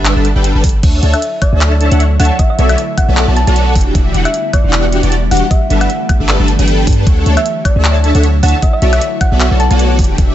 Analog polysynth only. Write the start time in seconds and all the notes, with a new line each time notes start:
Already playing: G3 D4 A4 B4 E5
0.16 G3 D4 A4 B4 A5
0.36 G3 D4 A4 B4 G5
0.55 G3 D4 A4 B4 A5
0.83 D4 A4 C#5 E5 F#5
1.03 D4 A4 C#5 E5 A5
1.53 D4 A4 C#5 E5 A5
1.92 D4 A4 C#5 E5 F#5
2.20 D4 A4 C#5 E5 A5
2.59 B3 F#4 A4 C#5 D5 E5
3.08 B3 F#4 A4 C#5 D5 E5
3.28 B3 F#4 A4 C#5 D5 A5
3.47 B3 F#4 A4 C#5 D5 F#5
3.75 E3 D4 F#4 G4 G5
3.95 E3 D4 F#4 G4 E5
4.14 E3 D4 F#4 G4 F#5
4.64 E3 D4 F#4 G4 F#5
5.03 E3 D4 F#4 G4 D5
5.31 E3 D4 F#4 G4 F#5
5.70 G3 D4 A4 B4 E5
6.20 G3 D4 A4 B4 E5
6.40 G3 D4 A4 B4 A5
6.59 G3 D4 A4 B4 G5
6.87 G3 D4 A4 B4 A5
7.07 D4 A4 C#5 E5 F#5
7.26 D4 A4 C#5 E5 A5
7.76 D4 A4 C#5 E5 A5
8.15 D4 A4 C#5 E5 F#5
8.43 D4 A4 C#5 E5 A5
8.82 B3 F#4 A4 C#5 D5 E5
9.32 B3 F#4 A4 C#5 D5 E5
9.51 B3 F#4 A4 C#5 D5 A5
9.71 B3 F#4 A4 C#5 D5 F#5
9.99 E3 D4 F#4 G4 G5
10.18 E3 D4 F#4 G4 E5